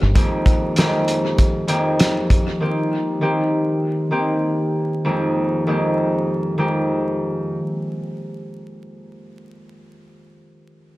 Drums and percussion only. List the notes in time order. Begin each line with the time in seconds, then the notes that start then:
0.16 kick, closed hi-hat
0.46 kick, closed hi-hat
0.76 cross-stick, snare, closed hi-hat
1.08 closed hi-hat
1.38 kick, closed hi-hat
1.68 closed hi-hat
2.00 cross-stick, snare, closed hi-hat
2.30 kick, closed hi-hat